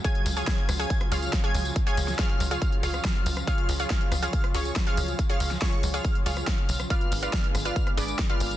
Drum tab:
HH |xxoxxxoxxxoxxxox|xxoxxxoxxxoxxxo-|xxoxxxoxxxoxxxox|xxoxxxoxxxoxxxox|
TB |--xx--xxx-xx--xx|--xx--xxx-xxx-xx|--xxx-xxx-xx--xx|x-xx--xxx-xx--xx|
SD |----o-r--r--o---|---oo------ro--r|----o-r--r--o---|---oo------ro--r|
BD |o---o---o---o---|o---o---o---o---|o---o---o---o---|o---o---o---o---|

HH |xxoxxxoxxxoxxxox|
TB |--xx--xxx-xx--xx|
SD |----o-r--r--o---|
BD |o---o---o---o---|